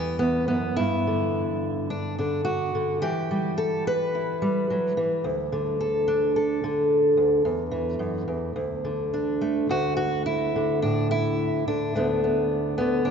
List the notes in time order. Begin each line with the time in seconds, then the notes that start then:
Already playing: E2 E3 G3 B3
0.19 E2 B3
0.48 F#2 B3
0.76 G2 E4
1.07 D3
1.90 D4
2.19 D3 D4
2.45 F#4
2.75 D3
3.02 E3 G4
3.31 G3
3.58 A4
3.87 B4
4.15 E4
4.42 G3
4.70 F#3
4.97 E3
5.24 D2
5.52 D3
5.81 A4
6.08 D4
6.36 A4
6.64 D3
7.17 D2
7.45 E2
7.71 E3
7.99 F#2
8.28 E2
8.56 D2
8.85 D3
9.14 D4
9.41 A3
9.69 D2 F#4
9.97 F#4
10.26 E4
10.56 D3
10.82 A2 D4
11.11 E4
11.68 D3 D4
11.95 D2 D3 A3 B3
12.24 B3
12.78 D3 B3
13.05 D2 D4